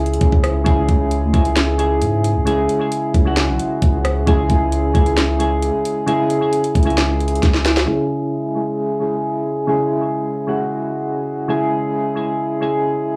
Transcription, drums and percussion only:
0.06 closed hi-hat
0.14 closed hi-hat
0.21 kick, closed hi-hat
0.32 kick
0.44 cross-stick, closed hi-hat
0.66 kick, closed hi-hat
0.89 kick, closed hi-hat
1.11 closed hi-hat
1.34 kick, closed hi-hat
1.45 closed hi-hat
1.56 finger snap, snare, closed hi-hat
1.79 closed hi-hat
2.02 closed hi-hat
2.24 closed hi-hat
2.47 closed hi-hat
2.69 closed hi-hat
2.92 closed hi-hat
3.14 kick, closed hi-hat
3.37 finger snap, snare, closed hi-hat
3.60 closed hi-hat
3.82 kick, closed hi-hat
4.05 cross-stick, closed hi-hat
4.27 kick, closed hi-hat
4.50 kick, closed hi-hat
4.72 closed hi-hat
4.95 kick, closed hi-hat
5.06 closed hi-hat
5.17 finger snap, snare, closed hi-hat
5.40 closed hi-hat
5.62 closed hi-hat
5.85 closed hi-hat
6.08 closed hi-hat
6.30 closed hi-hat
6.53 closed hi-hat
6.64 closed hi-hat
6.75 kick, closed hi-hat
6.83 closed hi-hat
6.90 closed hi-hat
6.98 finger snap, snare, closed hi-hat
7.20 closed hi-hat
7.28 closed hi-hat
7.35 closed hi-hat
7.43 kick, snare, closed hi-hat
7.54 snare
7.66 snare, closed hi-hat
7.77 snare

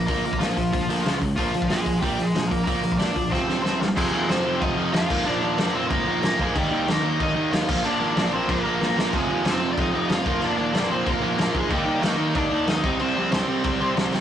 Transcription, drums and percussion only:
0.08 kick, open hi-hat
0.25 open hi-hat
0.33 kick
0.41 snare, open hi-hat
0.57 kick, open hi-hat
0.73 kick, open hi-hat
0.90 open hi-hat
1.06 snare, open hi-hat
1.22 kick, open hi-hat
1.37 kick, open hi-hat
1.54 open hi-hat
1.62 kick
1.70 snare, open hi-hat
1.86 kick, open hi-hat
2.03 kick, open hi-hat
2.19 open hi-hat
2.35 snare, open hi-hat
2.51 kick, open hi-hat
2.67 kick, open hi-hat
2.83 open hi-hat
2.92 kick
2.99 snare, open hi-hat
3.16 kick, open hi-hat
3.32 kick, snare
3.49 snare
3.65 snare
3.82 snare
3.97 kick, crash
4.29 snare, crash
4.62 kick, crash
4.94 snare, crash
5.10 kick, crash
5.26 crash
5.58 snare, crash
5.90 kick, crash
6.23 snare, crash
6.39 kick
6.56 kick, crash
6.88 snare, crash
7.20 kick, crash
7.53 snare, crash
7.69 kick, crash
7.85 crash
8.16 snare, crash
8.49 kick, crash
8.82 snare
8.98 snare
9.13 kick, crash
9.45 snare, crash
9.78 kick, crash
10.09 snare, crash
10.26 kick
10.42 crash
10.74 snare, crash
11.06 kick, crash
11.38 snare, crash
11.55 kick
11.70 kick, crash
12.03 snare, crash
12.35 kick, crash
12.67 snare, crash
12.84 kick
12.99 crash
13.32 snare, crash
13.64 kick, crash
13.97 snare, crash
14.14 snare

